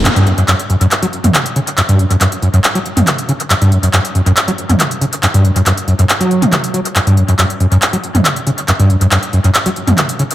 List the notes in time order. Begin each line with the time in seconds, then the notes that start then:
0.05 F#2, clap, closed hi-hat
0.16 G2, closed hi-hat
0.27 F#2, closed hi-hat
0.38 F#2, closed hi-hat
0.48 F#2, clap, closed hi-hat
0.59 closed hi-hat
0.70 F#2, closed hi-hat
0.81 F#2, closed hi-hat
0.91 clap, closed hi-hat
1.03 F#3, closed hi-hat
1.13 closed hi-hat
1.24 F#2, closed hi-hat, mid tom
1.34 clap, closed hi-hat
1.46 closed hi-hat
1.56 C#3, closed hi-hat
1.67 closed hi-hat
1.78 F#2, clap, closed hi-hat
1.89 G2, closed hi-hat
1.99 F#2, closed hi-hat
2.10 F#2, closed hi-hat
2.21 F#2, clap, closed hi-hat
2.32 closed hi-hat
2.42 F#2, closed hi-hat
2.54 F#2, closed hi-hat
2.64 clap, closed hi-hat
2.75 F#3, closed hi-hat
2.86 closed hi-hat
2.97 F#2, closed hi-hat, mid tom
3.07 clap, closed hi-hat
3.18 closed hi-hat
3.29 C#3, closed hi-hat
3.40 closed hi-hat
3.50 F#2, clap, closed hi-hat
3.62 G2, closed hi-hat
3.72 F#2, closed hi-hat
3.83 F#2, closed hi-hat
3.93 F#2, clap, closed hi-hat
4.05 closed hi-hat
4.15 F#2, closed hi-hat
4.26 F#2, closed hi-hat
4.37 clap, closed hi-hat
4.48 F#3, closed hi-hat
4.58 closed hi-hat
4.69 F#2, closed hi-hat, mid tom
4.80 clap, closed hi-hat
4.91 closed hi-hat
5.01 C#3, closed hi-hat
5.13 closed hi-hat
5.23 F#2, clap, closed hi-hat
5.34 G2, closed hi-hat
5.45 F#2, closed hi-hat
5.56 F#2, closed hi-hat
5.66 F#2, clap, closed hi-hat
5.77 closed hi-hat
5.88 F#2, closed hi-hat
5.99 F#2, closed hi-hat
6.09 clap, closed hi-hat
6.21 F#3, closed hi-hat
6.31 closed hi-hat
6.42 A2, closed hi-hat, mid tom
6.52 F#3, clap, closed hi-hat
6.64 closed hi-hat
6.74 F#3, closed hi-hat
6.85 closed hi-hat
6.96 F#2, clap, closed hi-hat
7.07 G2, closed hi-hat
7.17 F#2, closed hi-hat
7.28 F#2, closed hi-hat
7.39 F#2, clap, closed hi-hat
7.50 closed hi-hat
7.60 F#2, closed hi-hat
7.72 F#2, closed hi-hat
7.82 clap, closed hi-hat
7.93 F#3, closed hi-hat
8.04 closed hi-hat
8.15 F#2, closed hi-hat, mid tom
8.25 clap, closed hi-hat
8.36 closed hi-hat
8.47 C#3, closed hi-hat
8.58 closed hi-hat
8.68 F#2, clap, closed hi-hat
8.79 G2, closed hi-hat
8.90 F#2, closed hi-hat
9.01 F#2, closed hi-hat
9.11 F#2, clap, closed hi-hat
9.23 closed hi-hat
9.33 F#2, closed hi-hat
9.44 F#2, closed hi-hat
9.55 clap, closed hi-hat
9.66 F#3, closed hi-hat
9.76 closed hi-hat
9.87 F#2, closed hi-hat, mid tom
9.98 clap, closed hi-hat
10.09 closed hi-hat
10.19 C#3, closed hi-hat
10.31 closed hi-hat